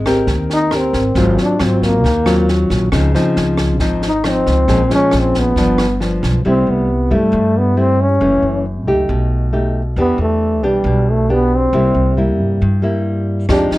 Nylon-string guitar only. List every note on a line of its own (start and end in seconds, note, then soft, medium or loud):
0.00 0.26 G#3 medium
0.06 0.69 C4 medium
0.06 0.69 G4 medium
0.06 0.69 A#4 medium
0.29 1.14 D#3 medium
0.72 1.01 C4 medium
0.72 1.02 G4 medium
0.72 1.02 A#4 medium
1.17 2.02 G#2 medium
1.17 1.57 F#3 medium
1.17 1.57 C4 medium
1.17 1.57 F4 medium
1.61 2.04 F#3 medium
1.61 2.04 C4 medium
1.61 2.05 F4 medium
2.05 2.90 D#3 medium
2.26 2.89 F#3 medium
2.26 2.89 C4 medium
2.26 2.89 F4 medium
2.93 3.78 C#3 medium
2.93 3.11 F3 medium
2.93 3.11 C4 medium
2.93 3.11 D#4 medium
3.15 3.77 F3 medium
3.15 3.77 C4 medium
3.15 3.77 D#4 medium
3.80 4.66 G#2 medium
3.80 4.09 F3 medium
3.80 4.09 C4 medium
3.80 4.09 D#4 medium
4.24 4.66 F3 medium
4.24 4.67 C4 medium
4.24 4.67 D#4 medium
4.68 5.54 A#2 medium
4.68 4.82 F3 medium
4.68 4.81 G#3 medium
4.68 4.82 C#4 medium
4.91 5.53 F3 medium
4.91 5.53 G#3 medium
4.91 5.54 C#4 medium
5.57 6.43 G2 medium
5.57 5.85 F3 medium
5.57 5.85 B3 medium
5.57 5.86 D4 medium
6.00 6.43 F3 medium
6.00 6.43 B3 soft
6.00 6.43 D4 medium
6.45 7.31 C3 medium
6.45 6.89 G3 medium
6.45 6.89 A3 medium
6.45 6.89 E4 medium
7.11 7.73 G3 medium
7.11 7.73 A3 medium
7.11 7.74 E4 medium
7.32 8.18 G2 medium
7.77 8.05 G3 soft
7.77 8.05 A3 soft
7.77 8.05 E4 medium
8.21 9.07 F#2 medium
8.21 8.65 E3 medium
8.21 8.65 A3 medium
8.21 8.65 C#4 medium
8.87 9.50 A3 medium
8.87 9.50 D#4 medium
8.87 9.50 G4 medium
9.10 9.95 B2 soft
9.53 9.81 A3 medium
9.53 9.81 D#4 soft
9.53 9.82 G4 medium
9.98 10.83 E3 medium
9.98 10.60 B3 medium
9.98 10.60 D4 medium
9.98 10.60 G4 medium
10.63 11.26 B3 medium
10.63 11.26 D4 medium
10.63 11.26 G4 medium
10.87 11.72 B2 soft
11.29 11.72 B3 soft
11.29 11.72 D4 medium
11.29 11.72 G4 medium
11.74 12.60 C3 medium
11.74 12.14 G3 medium
11.74 12.14 A#3 medium
11.74 12.14 E4 medium
12.17 12.61 G3 medium
12.17 12.61 A#3 medium
12.17 12.62 E4 medium
12.62 13.48 G2 medium
12.82 13.46 G3 medium
12.82 13.46 A#3 medium
12.82 13.46 E4 medium
13.49 13.78 F3 medium
13.49 13.78 G#3 medium
13.49 13.78 D#4 medium
13.49 13.78 G4 medium